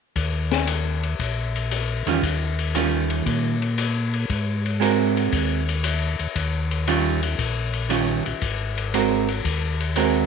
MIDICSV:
0, 0, Header, 1, 4, 480
1, 0, Start_track
1, 0, Tempo, 516351
1, 144, Time_signature, 4, 2, 24, 8
1, 9539, End_track
2, 0, Start_track
2, 0, Title_t, "Hollow-body jazz guitar"
2, 0, Program_c, 0, 26
2, 1923, Note_on_c, 0, 51, 62
2, 1933, Note_on_c, 0, 55, 63
2, 1937, Note_on_c, 0, 61, 62
2, 1942, Note_on_c, 0, 65, 68
2, 2056, Note_off_c, 0, 51, 0
2, 2061, Note_off_c, 0, 55, 0
2, 2063, Note_off_c, 0, 61, 0
2, 2066, Note_off_c, 0, 65, 0
2, 2555, Note_on_c, 0, 51, 53
2, 2559, Note_on_c, 0, 55, 52
2, 2563, Note_on_c, 0, 61, 53
2, 2563, Note_on_c, 0, 65, 59
2, 3300, Note_off_c, 0, 51, 0
2, 3302, Note_off_c, 0, 55, 0
2, 3303, Note_off_c, 0, 65, 0
2, 3304, Note_off_c, 0, 61, 0
2, 4461, Note_on_c, 0, 56, 54
2, 4469, Note_on_c, 0, 60, 55
2, 4471, Note_on_c, 0, 66, 54
2, 4475, Note_on_c, 0, 70, 59
2, 5213, Note_off_c, 0, 56, 0
2, 5217, Note_off_c, 0, 60, 0
2, 5218, Note_off_c, 0, 66, 0
2, 5220, Note_off_c, 0, 70, 0
2, 6393, Note_on_c, 0, 51, 57
2, 6396, Note_on_c, 0, 55, 59
2, 6398, Note_on_c, 0, 61, 59
2, 6401, Note_on_c, 0, 65, 63
2, 6691, Note_off_c, 0, 51, 0
2, 6693, Note_off_c, 0, 55, 0
2, 6694, Note_off_c, 0, 61, 0
2, 6695, Note_off_c, 0, 65, 0
2, 7337, Note_on_c, 0, 51, 48
2, 7345, Note_on_c, 0, 55, 54
2, 7347, Note_on_c, 0, 61, 57
2, 7350, Note_on_c, 0, 65, 53
2, 7642, Note_off_c, 0, 51, 0
2, 7646, Note_off_c, 0, 55, 0
2, 7647, Note_off_c, 0, 61, 0
2, 7649, Note_off_c, 0, 65, 0
2, 8309, Note_on_c, 0, 56, 50
2, 8314, Note_on_c, 0, 60, 47
2, 8319, Note_on_c, 0, 66, 49
2, 8320, Note_on_c, 0, 70, 50
2, 8607, Note_off_c, 0, 56, 0
2, 8609, Note_off_c, 0, 60, 0
2, 8612, Note_off_c, 0, 66, 0
2, 8613, Note_off_c, 0, 70, 0
2, 9261, Note_on_c, 0, 56, 49
2, 9264, Note_on_c, 0, 60, 49
2, 9268, Note_on_c, 0, 70, 52
2, 9272, Note_on_c, 0, 66, 50
2, 9539, Note_off_c, 0, 56, 0
2, 9539, Note_off_c, 0, 60, 0
2, 9539, Note_off_c, 0, 66, 0
2, 9539, Note_off_c, 0, 70, 0
2, 9539, End_track
3, 0, Start_track
3, 0, Title_t, "Tonewheel organ"
3, 0, Program_c, 1, 16
3, 145, Note_on_c, 1, 39, 68
3, 1070, Note_off_c, 1, 39, 0
3, 1112, Note_on_c, 1, 34, 71
3, 1886, Note_off_c, 1, 34, 0
3, 1914, Note_on_c, 1, 40, 58
3, 2056, Note_off_c, 1, 40, 0
3, 2073, Note_on_c, 1, 39, 67
3, 2997, Note_off_c, 1, 39, 0
3, 3030, Note_on_c, 1, 46, 69
3, 3955, Note_off_c, 1, 46, 0
3, 3991, Note_on_c, 1, 44, 70
3, 4916, Note_off_c, 1, 44, 0
3, 4948, Note_on_c, 1, 39, 75
3, 5725, Note_off_c, 1, 39, 0
3, 5757, Note_on_c, 1, 39, 35
3, 5834, Note_off_c, 1, 39, 0
3, 5907, Note_on_c, 1, 39, 73
3, 6833, Note_off_c, 1, 39, 0
3, 6867, Note_on_c, 1, 34, 70
3, 7643, Note_off_c, 1, 34, 0
3, 7678, Note_on_c, 1, 34, 32
3, 7754, Note_off_c, 1, 34, 0
3, 7824, Note_on_c, 1, 32, 68
3, 8749, Note_off_c, 1, 32, 0
3, 8782, Note_on_c, 1, 39, 67
3, 9539, Note_off_c, 1, 39, 0
3, 9539, End_track
4, 0, Start_track
4, 0, Title_t, "Drums"
4, 146, Note_on_c, 9, 51, 53
4, 147, Note_on_c, 9, 36, 29
4, 239, Note_off_c, 9, 51, 0
4, 240, Note_off_c, 9, 36, 0
4, 477, Note_on_c, 9, 51, 36
4, 479, Note_on_c, 9, 38, 32
4, 570, Note_off_c, 9, 51, 0
4, 572, Note_off_c, 9, 38, 0
4, 624, Note_on_c, 9, 44, 48
4, 624, Note_on_c, 9, 51, 51
4, 717, Note_off_c, 9, 44, 0
4, 717, Note_off_c, 9, 51, 0
4, 961, Note_on_c, 9, 51, 35
4, 1054, Note_off_c, 9, 51, 0
4, 1111, Note_on_c, 9, 36, 28
4, 1112, Note_on_c, 9, 51, 47
4, 1204, Note_off_c, 9, 36, 0
4, 1205, Note_off_c, 9, 51, 0
4, 1447, Note_on_c, 9, 51, 33
4, 1540, Note_off_c, 9, 51, 0
4, 1592, Note_on_c, 9, 44, 48
4, 1592, Note_on_c, 9, 51, 51
4, 1685, Note_off_c, 9, 44, 0
4, 1685, Note_off_c, 9, 51, 0
4, 1922, Note_on_c, 9, 51, 38
4, 2015, Note_off_c, 9, 51, 0
4, 2074, Note_on_c, 9, 36, 28
4, 2076, Note_on_c, 9, 51, 49
4, 2167, Note_off_c, 9, 36, 0
4, 2169, Note_off_c, 9, 51, 0
4, 2404, Note_on_c, 9, 51, 40
4, 2497, Note_off_c, 9, 51, 0
4, 2554, Note_on_c, 9, 44, 49
4, 2554, Note_on_c, 9, 51, 49
4, 2646, Note_off_c, 9, 44, 0
4, 2646, Note_off_c, 9, 51, 0
4, 2882, Note_on_c, 9, 51, 36
4, 2975, Note_off_c, 9, 51, 0
4, 3033, Note_on_c, 9, 51, 52
4, 3034, Note_on_c, 9, 36, 28
4, 3126, Note_off_c, 9, 51, 0
4, 3127, Note_off_c, 9, 36, 0
4, 3365, Note_on_c, 9, 51, 35
4, 3458, Note_off_c, 9, 51, 0
4, 3512, Note_on_c, 9, 44, 52
4, 3512, Note_on_c, 9, 51, 62
4, 3605, Note_off_c, 9, 44, 0
4, 3605, Note_off_c, 9, 51, 0
4, 3845, Note_on_c, 9, 51, 37
4, 3938, Note_off_c, 9, 51, 0
4, 3994, Note_on_c, 9, 36, 29
4, 3995, Note_on_c, 9, 51, 44
4, 4087, Note_off_c, 9, 36, 0
4, 4088, Note_off_c, 9, 51, 0
4, 4329, Note_on_c, 9, 51, 37
4, 4422, Note_off_c, 9, 51, 0
4, 4480, Note_on_c, 9, 44, 47
4, 4480, Note_on_c, 9, 51, 50
4, 4573, Note_off_c, 9, 44, 0
4, 4573, Note_off_c, 9, 51, 0
4, 4806, Note_on_c, 9, 51, 36
4, 4899, Note_off_c, 9, 51, 0
4, 4950, Note_on_c, 9, 51, 54
4, 4953, Note_on_c, 9, 36, 30
4, 5043, Note_off_c, 9, 51, 0
4, 5045, Note_off_c, 9, 36, 0
4, 5286, Note_on_c, 9, 51, 40
4, 5379, Note_off_c, 9, 51, 0
4, 5426, Note_on_c, 9, 44, 45
4, 5426, Note_on_c, 9, 51, 56
4, 5519, Note_off_c, 9, 44, 0
4, 5519, Note_off_c, 9, 51, 0
4, 5757, Note_on_c, 9, 51, 36
4, 5850, Note_off_c, 9, 51, 0
4, 5908, Note_on_c, 9, 51, 51
4, 5910, Note_on_c, 9, 36, 27
4, 6001, Note_off_c, 9, 51, 0
4, 6003, Note_off_c, 9, 36, 0
4, 6239, Note_on_c, 9, 51, 37
4, 6332, Note_off_c, 9, 51, 0
4, 6390, Note_on_c, 9, 44, 52
4, 6390, Note_on_c, 9, 51, 56
4, 6483, Note_off_c, 9, 44, 0
4, 6483, Note_off_c, 9, 51, 0
4, 6718, Note_on_c, 9, 51, 39
4, 6811, Note_off_c, 9, 51, 0
4, 6867, Note_on_c, 9, 51, 52
4, 6868, Note_on_c, 9, 36, 29
4, 6960, Note_off_c, 9, 51, 0
4, 6961, Note_off_c, 9, 36, 0
4, 7190, Note_on_c, 9, 51, 36
4, 7283, Note_off_c, 9, 51, 0
4, 7342, Note_on_c, 9, 44, 49
4, 7342, Note_on_c, 9, 51, 55
4, 7435, Note_off_c, 9, 44, 0
4, 7435, Note_off_c, 9, 51, 0
4, 7677, Note_on_c, 9, 51, 36
4, 7770, Note_off_c, 9, 51, 0
4, 7823, Note_on_c, 9, 51, 53
4, 7826, Note_on_c, 9, 36, 29
4, 7916, Note_off_c, 9, 51, 0
4, 7919, Note_off_c, 9, 36, 0
4, 8158, Note_on_c, 9, 51, 37
4, 8251, Note_off_c, 9, 51, 0
4, 8309, Note_on_c, 9, 44, 56
4, 8309, Note_on_c, 9, 51, 51
4, 8402, Note_off_c, 9, 44, 0
4, 8402, Note_off_c, 9, 51, 0
4, 8631, Note_on_c, 9, 51, 37
4, 8724, Note_off_c, 9, 51, 0
4, 8784, Note_on_c, 9, 36, 28
4, 8784, Note_on_c, 9, 51, 51
4, 8876, Note_off_c, 9, 36, 0
4, 8877, Note_off_c, 9, 51, 0
4, 9114, Note_on_c, 9, 51, 40
4, 9207, Note_off_c, 9, 51, 0
4, 9256, Note_on_c, 9, 44, 55
4, 9256, Note_on_c, 9, 51, 55
4, 9349, Note_off_c, 9, 44, 0
4, 9349, Note_off_c, 9, 51, 0
4, 9539, End_track
0, 0, End_of_file